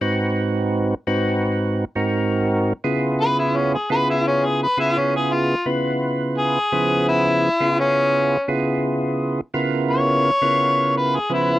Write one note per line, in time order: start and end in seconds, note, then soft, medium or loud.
0.01 0.95 G#2 loud
0.01 0.95 C4 medium
0.01 0.95 D#4 medium
0.01 0.95 F#4 medium
0.01 0.95 B4 loud
1.07 1.85 G#2 medium
1.07 1.85 C4 medium
1.07 1.85 D#4 medium
1.07 1.85 F#4 medium
1.07 1.85 B4 loud
1.95 2.73 G#2 medium
1.95 2.73 C4 medium
1.95 2.73 D#4 medium
1.95 2.73 F#4 medium
1.95 2.74 A#4 loud
2.84 3.77 C#3 medium
2.84 3.77 B3 medium
2.84 3.77 E4 medium
2.84 3.77 F4 medium
2.84 3.77 G#4 loud
3.21 3.37 B4 loud
3.39 3.58 E4 medium
3.57 3.72 C#4 medium
3.74 3.90 G#4 medium
3.90 4.67 C#3 medium
3.90 4.67 B3 medium
3.90 4.67 E4 medium
3.90 4.67 F4 medium
3.90 4.67 G#4 medium
3.90 4.07 B4 medium
4.10 4.25 E4 medium
4.27 4.47 C#4 medium
4.45 4.60 G#4 medium
4.63 4.78 B4 medium
4.77 5.55 C#3 medium
4.77 5.55 B3 medium
4.77 5.55 E4 medium
4.77 4.99 E4 medium
4.77 5.55 F4 medium
4.77 5.55 G#4 medium
4.98 5.13 C#4 medium
5.16 5.34 G#4 medium
5.33 5.66 F4 medium
5.66 6.59 C#3 medium
5.66 6.59 B3 medium
5.66 6.59 E4 medium
5.66 6.59 F4 medium
5.66 6.59 B4 medium
6.38 7.06 G#4 medium
6.72 7.49 C#3 medium
6.72 7.49 F3 medium
6.72 7.49 B3 medium
6.72 7.49 E4 medium
6.72 7.49 G#4 medium
7.08 7.76 E4 loud
7.60 8.37 C#3 medium
7.60 8.37 B3 medium
7.60 8.37 E4 medium
7.60 8.38 F4 medium
7.60 8.37 G#4 medium
7.79 8.47 C#4 loud
8.48 9.41 C#3 medium
8.48 9.41 B3 medium
8.48 9.41 E4 medium
8.48 9.41 F4 medium
8.48 9.41 G#4 medium
9.54 10.31 C#3 medium
9.54 10.31 B3 medium
9.54 10.31 E4 medium
9.54 10.31 F4 medium
9.54 10.31 A#4 loud
9.91 10.92 C#5 loud
10.42 11.19 C#3 medium
10.42 11.19 B3 medium
10.42 11.19 E4 medium
10.42 11.19 F4 medium
10.42 11.19 A#4 medium
10.97 11.17 B4 medium
11.15 11.30 G#4 medium
11.29 11.59 C#3 medium
11.29 11.59 F3 medium
11.29 11.59 B3 medium
11.29 11.59 E4 medium
11.29 11.59 B4 medium